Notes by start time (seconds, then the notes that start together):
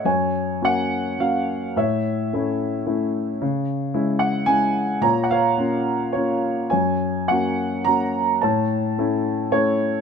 0.05 F#2 C#5 G#5
0.62 A#3 C#4 F#4 F#5
1.19 A#3 C#4 F#4 F5
1.76 A2 C#5 E5
2.33 A3 C#4 E4
2.86 A3 C#4 E4
3.42 C#3
3.94 G#3 C#4 E4
4.19 F#5
4.46 G#3 C#4 E4 G#5
5.01 A#2 C#5 A#5
5.23 F#5
5.31 C#5 F5
5.58 A#3 C#4 F4
6.13 A#3 C#4 F4 C#5
6.70 F#2 C#5 G#5
7.28 A#3 C#4 F#4 F#5
7.85 A#3 C#4 F#4 A#5
8.42 A2 C#5 A5
8.98 A3 C#4 E4
9.52 A3 C#4 E4 C#5